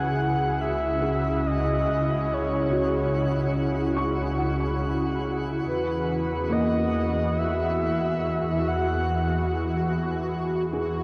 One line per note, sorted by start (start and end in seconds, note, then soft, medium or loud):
0.00 5.62 C#2 medium
0.00 5.67 C#3 medium
0.00 7.10 C#4 medium
0.00 11.04 E4 medium
0.00 1.46 F#4 medium
0.00 11.04 F#4 medium
0.00 11.04 G#4 medium
0.00 0.63 F#5 loud
0.00 11.04 F#5 medium
0.61 1.48 E5 medium
1.01 2.87 G#4 medium
1.47 2.35 D#5 medium
2.34 3.58 C#5 medium
2.72 5.39 F#4 medium
3.96 6.64 C#6 medium
4.38 7.06 F#5 medium
5.66 11.04 E2 medium
5.66 11.04 E3 medium
5.66 6.54 B4 medium
6.10 11.04 F#4 medium
6.50 9.18 A#3 medium
6.50 7.40 D#5 medium
7.38 8.69 E5 loud
8.67 9.49 F#5 loud
10.73 11.04 G#4 medium